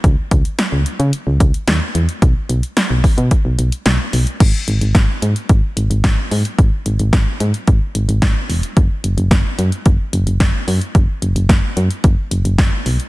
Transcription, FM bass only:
X:1
M:4/4
L:1/16
Q:1/4=110
K:F#dor
V:1 name="FM bass" clef=bass
C,, z C,, z2 C,, z C, z C,, C,, z D,, z E,, z | B,,, z B,,, z2 B,,, z B,, z B,,, B,,, z B,,, z B,,, z | G,,, z G,,, G,,, G,,, z G,, z G,,, z G,,, G,,, G,,, z G,, z | G,,, z G,,, G,,, G,,, z G,, z G,,, z G,,, G,,, G,,, z E,,, z |
F,,, z F,,, F,,, F,,, z F,, z F,,, z F,,, F,,, F,,, z F,, z | F,,, z F,,, F,,, F,,, z F,, z F,,, z F,,, F,,, F,,, z B,,, z |]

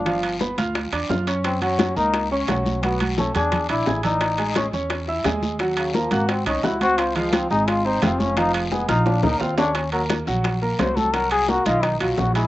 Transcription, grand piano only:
X:1
M:4/4
L:1/8
Q:1/4=173
K:Ebdor
V:1 name="Grand piano"
[F,Ff]2 [=B,=B=b] [Fff']2 [=D=d=d'] [Fff'] [_D_d_d']- | [Ddd'] [G,Gg]2 [B,Bb]2 [Ddd'] [G,Gg]2 | [G,Gg]2 [=A,=A=a] [_A_aa']2 [=D=d=d'] [^G^g^g'] [=E,d=e']- | [=E,=d=e'] [^G,^G^g]2 [^C^c^c']2 [=E=ee'] [G,Gg]2 |
[G,Gg]2 [B,Bb] [Ggg']2 [Eee'] [Ggg'] [Ccc']- | [Ccc'] [F,Ff]2 [A,Aa]2 [Ccc'] [F,Ff]2 | [F,Ff]2 [A,Aa] [Fff']2 [B,Bb] [Fff'] [Ddd'] | z [B,Bb]2 [G,Gg]2 [B,Bb] [G,Gg]2 |
[G,Gg]2 [B,Bb] [E,Ee]2 [G,Gg]2 [A,Aa] |]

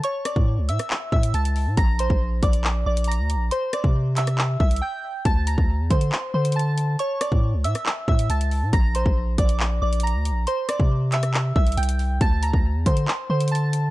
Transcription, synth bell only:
X:1
M:4/4
L:1/8
Q:1/4=138
K:Cmix
V:1 name="Synth bell"
[^c^c'] [dd'] z [ee']2 [ee'] [aa']2 | [bb'] [cc'] z [dd']2 [dd'] [bb']2 | [cc'] [dd'] z [ee']2 [ee'] [gg']2 | [aa'] [bb'] z [cc']2 [cc'] [aa']2 |
[^c^c'] [dd'] z [ee']2 [ee'] [aa']2 | [bb'] [cc'] z [dd']2 [dd'] [bb']2 | [cc'] [dd'] z [ee']2 [ee'] [gg']2 | [aa'] [bb'] z [cc']2 [cc'] [aa']2 |]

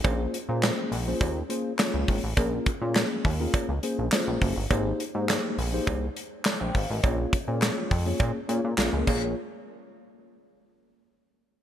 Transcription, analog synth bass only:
X:1
M:4/4
L:1/16
Q:1/4=103
K:Bbdor
V:1 name="Analog synth bass" clef=bass
B,,,2 z B,,2 z B,,,2 E,,2 z3 D,, A,,, =A,,, | B,,,2 z B,,2 z E,,2 z D,, z B,,, z B,,, _G,,, =G,,, | A,,,2 z A,,2 z B,,,2 C,,2 z3 B,,, A,,, =A,,, | B,,,2 z B,,2 z F,,2 B,, z B,, B,, B,,, D,, B,,,2 |
z16 |]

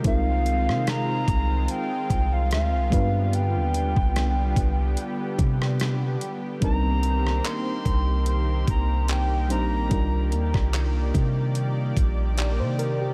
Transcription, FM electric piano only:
X:1
M:4/4
L:1/16
Q:"Swing 16ths" 1/4=73
K:Cm
V:1 name="FM electric piano"
[A,CEFB]12- [A,CEFB]2 [G,=B,DF=B]2- | [G,=B,DF=B]12- [G,B,DFB]2 z2 | [G,CDEB]12- [G,CDEB]2 [G,CDEc]2 | [G,DEFB]12 d c B G |]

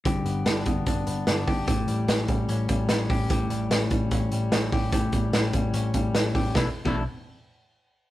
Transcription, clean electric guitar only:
X:1
M:4/4
L:1/16
Q:1/4=148
K:Amix
V:1 name="Clean electric guitar"
[G,,G]2 B,2 D2 B,2 D2 B,2 D2 G2 | [A,,G]2 G,2 C2 G,2 C2 G,2 B, C G2 | [A,,G]2 G,2 C2 G,2 C2 G,2 C2 G2 | [A,,G]2 G,2 C2 G,2 C2 G,2 C2 G2 |
[B,,E,A,DE] z2 [B,,E,A,DE]2 z8 z3 |]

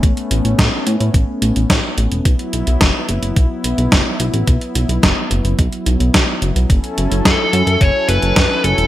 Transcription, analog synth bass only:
X:1
M:4/4
L:1/16
Q:1/4=108
K:Bmix
V:1 name="Analog synth bass" clef=bass
A,,, z A,,, A,,, A,, z A,, A,, A,,, z A,,, A,,, A,, z A,,, E,,, | B,,, z B,,, B,,, F,,, z F,,, F,,, B,,, z B,,, B,,, F,,, z B,,, A,,, | B,,, z B,,, B,,, F,,, z F,,, F,,, B,,, z B,,, B,,, B,,, z F,,, B,,, | F,,, z F,,, F,,, F,, z F,, F,, F,,, z F,,, F,,, F,, z F,,, E,,, |]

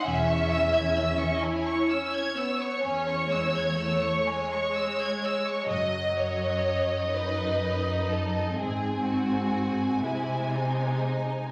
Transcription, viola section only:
X:1
M:12/8
L:1/8
Q:3/8=42
K:C#m
V:1 name="Viola section"
C3 E C B, C G, A, G,3 | F,3 D3 ^B,3 G,3 |]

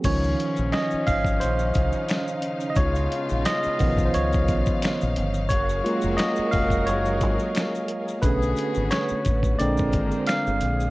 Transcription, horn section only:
X:1
M:4/4
L:1/8
Q:"Swing 16ths" 1/4=88
K:Db
V:1 name="Horn section"
[A,,F,D]6- [A,,F,D] z | [_C,A,F]6- [C,A,F] z | [D,B,G]6- [D,B,G] z | [=D,_CA]3 z [F,=DB]3 z |]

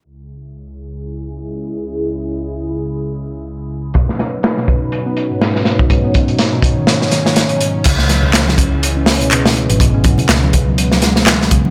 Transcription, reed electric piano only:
X:1
M:4/4
L:1/16
Q:"Swing 16ths" 1/4=123
K:C#m
V:1 name="Reed electric piano" clef=bass
z16 | z16 | B,, z4 B,, z3 B, z G,, G,, z3 | G,, B, z B,, z B,, z D, z2 D, z2 B,, G,, z |
C, z4 C, z3 C z B,, B,, z3 | B,, C z C, z C, z F, z2 G, z3 C, z |]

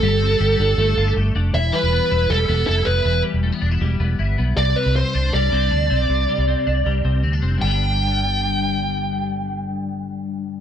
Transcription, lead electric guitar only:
X:1
M:4/4
L:1/8
Q:1/4=158
K:G
V:1 name="Lead electric guitar"
A6 z2 | e B3 A2 A B- | B z6 z | d B c2 d4- |
d6 z2 | g8- | g8 |]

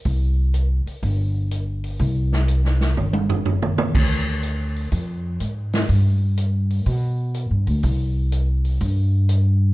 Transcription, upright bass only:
X:1
M:4/4
L:1/8
Q:"Swing" 1/4=123
K:Gdor
V:1 name="Upright bass" clef=bass
C,,3 z G,,,4 | C,,4 G,,,3 z | D,,4 F,,2 _A,,2 | G,,4 =B,,2- (3B,, G,, D,, |
C,,4 G,,4 |]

